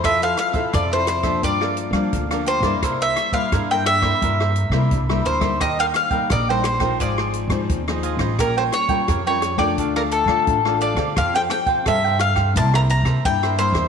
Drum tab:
HH |xxxxx-xxx-xxxxxx|x-xxxxx-x-x-x-xx|xxxxx-xxx-xxxxxx|x-xxxxx-x-x-x-xx|
SD |r-r-r-rr-r-r-r-r|r-r-r-rr-r-r-r-r|r-r-r-rr-r-r-r-r|r-r-r-rr-r-r-r-r|
BD |o--oo--oo--oo--o|o--oo--oo--oo--o|o--oo--oo--oo--o|o--oo--oo--oo--o|

HH |xxxxx-xxx-xxxxxx|
SD |r-r-r-rr-r-r-r-r|
BD |o--oo--oo--oo--o|